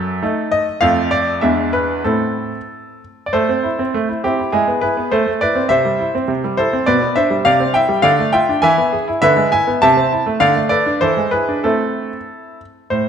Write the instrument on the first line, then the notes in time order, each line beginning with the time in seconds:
grand piano
Already playing: F#2 A4
0.23 A3 D#4 A4
0.52 D#5
0.81 F2 A3 F4 A4 F5
1.11 D5
1.41 E2 G#3 D4 E4 E5
1.73 B4
2.04 A2 C4 E4 A4
3.26 D5
3.33 A3 A4 C5
3.49 C4
3.63 E4
3.79 C4
3.94 A3
4.09 E4
4.24 C4 E4 G4
4.39 E4
4.52 G#3 E4 G#4
4.68 B3
4.81 E4 G#4 B4
4.97 B3
5.11 A3 A4 C5
5.26 A3
5.41 E4 B4 D5
5.55 C4
5.69 C3 C5 E5
5.85 G3
5.99 E4
6.15 C4
6.28 C3
6.44 G3
6.57 E4 A4 C5
6.73 C4
6.86 B2 B4 D5
7.02 B3
7.16 D4 C5 E5
7.30 G3
7.45 C3 D5 F5
7.60 C4
7.74 E4 E5 G5
7.89 G3
8.02 D3 D5 F5
8.19 A3
8.33 F4 E5 G5
8.49 D4
8.62 E3 E5 G#5
8.78 B3
8.92 G#4
9.08 E4
9.22 D3 B4 E5
9.37 G#3
9.52 E4 E5 G#5
9.67 B3
9.82 C3 E5 A5
9.97 C4
10.12 E4
10.26 A3
10.40 D3 D5 F5
10.56 A3
10.69 A4 B4 D5
10.86 D4
11.01 E3 A4 C5
11.17 G#3
11.31 E4 G#4 B4
11.49 D4
11.64 A3 C4 E4 A4
12.90 A2 C5